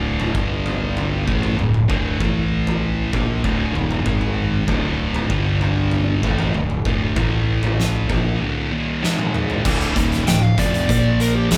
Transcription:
Already playing: D1 D2 A2 D3
0.20 floor tom
0.34 G1 G2 D3 G3, kick
0.66 floor tom
0.97 floor tom
1.27 A1 A2 E3 A3, kick, mid tom
1.43 floor tom
1.57 D1 D2 A2, mid tom
1.74 mid tom
1.88 D1 D2 A2 D3, kick
2.19 A1 A2 E3 A3, kick, floor tom
2.67 floor tom
3.13 A#1 A#2 F3 A#3, kick, floor tom
3.44 D1 D2 A2 D3, kick, floor tom
3.75 D#1 D#2 A#2 D#3, mid tom
3.91 floor tom
4.06 G#1 G#2 D#3 G#3, kick, mid tom
4.21 mid tom
4.67 D1 D2 A2 D3, kick, floor tom
5.15 floor tom
5.30 G1 G2 D3 G3, kick
5.61 floor tom
5.91 floor tom
6.23 A1 A2 E3 A3, kick, mid tom
6.38 floor tom
6.54 D1 D2 A2, mid tom
6.70 mid tom
6.85 D1 D2 A2 D3, kick
7.16 A1 A2 E3 A3, kick, floor tom
7.63 floor tom
7.80 snare
8.09 A#1 A#2 F3 A#3, kick, floor tom
8.40 D2 A2 D3
8.71 D#2 A#2 D#3
9.02 G#2 D#3 G#3, snare
9.18 high tom
9.34 mid tom
9.50 floor tom
9.64 D1 D2 A2 D3, kick, crash
9.81 closed hi-hat
9.95 D#1 D#2 A#2 D#3, kick, closed hi-hat
10.12 snare, closed hi-hat
10.27 D1 D2 A2 G5, snare, closed hi-hat
10.43 F5
10.58 F1 F2 C3 F3 D5, kick, closed hi-hat
10.74 closed hi-hat
10.88 A#1 A#2 F3 A#3, kick, closed hi-hat
11.20 A#4, closed hi-hat
11.35 G4
11.50 G#1 G#2 D#3 G#3 G#4, snare, closed hi-hat

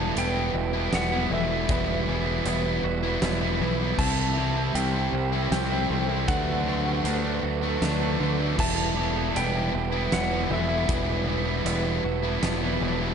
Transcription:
Already playing: E1 E3 G3 B3 E4 E5 A5 B5
0.00 G3 B3
0.16 E1 E3 G3 B3 E4 B4 G5, closed hi-hat
0.36 G3 B3 E4
0.54 E1, muted distorted electric guitar stroke
0.73 G3 B3 E4
0.92 E1 B3 F#5, snare, closed hi-hat
1.12 G3 B3 E4
1.30 E1 E3 G3 B3 A4 E5
1.34 E4
1.50 G3 B3 E4
1.69 E1 E3 G3 B3 E4 B4, kick, closed hi-hat
2.08 E3 G3 B3 E4
2.26 G3 B3 E4
2.45 E1 E3 G3 B3 E4 B4, closed hi-hat
2.65 G3 B3 E4
2.84 E1 F#4 B4, muted distorted electric guitar stroke
3.03 G3 B3 E4
3.21 E1 B3, snare, closed hi-hat
3.41 G3 B3 E4
3.60 B1 E3 G3 B3 E4 B4
3.79 G3 B3 E4
3.98 C2 C3 G3 C4 E4 G4 C5 E5 A5 C6, kick, crash
4.36 C3 E3 G3 C4 E4
4.55 G3 C4 E4
4.75 C2 C3 G3 C4 E4 C5 G5, closed hi-hat
4.93 G3 C4 E4
5.13 C2 E4 C5, muted distorted electric guitar stroke
5.32 G3 C4 E4
5.51 C2 C4 G5, snare, closed hi-hat
5.71 G3 C4 E4
5.89 C2 C3 E3 G3 C4 E4 A4
6.08 G3 C4 E4
6.28 D2 D3 F#3 A3 D4 A4 B4 D5 F#5 D6, kick, closed hi-hat
6.66 D3 F#3 A3 D4
6.86 F#3 A3 D4
7.04 D2 D3 F#3 A3 D4 B4, closed hi-hat
7.23 F#3 A3 D4
7.43 D2 F#4 B4, muted distorted electric guitar stroke
7.63 F#3 A3 D4
7.81 D2 D4, snare, closed hi-hat
8.01 F#3 A3 D4
8.20 D2 D3 F#3 A3 D4 B4
8.39 F#3 A3 D4
8.58 E1 E3 G3 B3 E4 E5 A5 B5, kick, crash
8.97 E3 G3 B3 E4
9.15 G3 B3 E4
9.35 E1 E3 G3 B3 E4 B4 G5, closed hi-hat
9.54 G3 B3 E4
9.74 E1 B4, muted distorted electric guitar stroke
9.92 G3 B3 E4
10.12 E1 B3 F#5, snare, closed hi-hat
10.31 G3 B3 E4
10.50 E1 E3 G3 B3 E4 A4 E5
10.69 G3 B3 E4
10.89 E1 E3 G3 B3 E4 B4 A5, kick, closed hi-hat
11.27 E3 G3 B3 E4
11.45 G3 B3 E4
11.65 E1 E3 G3 B3 E4 B4, closed hi-hat
11.84 G3 B3 E4
12.04 E1 F#4 B4, muted distorted electric guitar stroke
12.23 G3 B3 E4
12.42 E1 B3, snare, closed hi-hat
12.61 G3 B3 E4
12.80 E1 E3 G3 B3 E4
13.01 G3 B3 E4

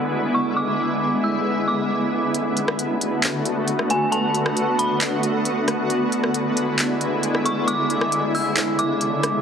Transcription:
Already playing: D3 G#3 B3 E4 D5 G#5
0.34 C#6
0.56 C#4 D6
1.24 E6
1.68 D6
2.34 D3 A3 B3 D4 F#4 B4 A5, closed hi-hat
2.57 closed hi-hat
2.68 cross-stick
2.79 closed hi-hat
3.01 closed hi-hat
3.23 clap, closed hi-hat
3.45 closed hi-hat
3.68 closed hi-hat
3.79 cross-stick
3.90 G#5, closed hi-hat
4.12 A5 B5, closed hi-hat
4.34 closed hi-hat
4.46 cross-stick
4.57 closed hi-hat
4.79 B5, closed hi-hat
5.01 clap, closed hi-hat
5.23 closed hi-hat
5.45 closed hi-hat
5.68 cross-stick, closed hi-hat
5.90 G#3 E4 D5 G#5, closed hi-hat
6.12 closed hi-hat
6.24 cross-stick
6.34 closed hi-hat
6.57 closed hi-hat
6.79 clap, closed hi-hat
7.01 closed hi-hat
7.23 closed hi-hat
7.35 cross-stick
7.46 C#6, closed hi-hat
7.67 C#3 D6, closed hi-hat
7.90 closed hi-hat
8.01 cross-stick
8.12 closed hi-hat
8.35 E6, open hi-hat
8.57 clap, closed hi-hat
8.79 D6, closed hi-hat
9.01 closed hi-hat
9.23 cross-stick, closed hi-hat

